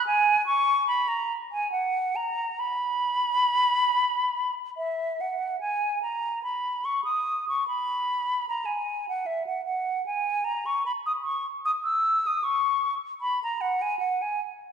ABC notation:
X:1
M:3/4
L:1/16
Q:1/4=75
K:B
V:1 name="Flute"
g2 c'2 b a2 g f2 a2 | b8- b2 e2 | f2 g2 a2 b2 c' d'2 c' | b4 a g2 f e f f2 |
g2 a c' b d' c'2 d' e'2 d' | c'3 z b a f g f g z2 |]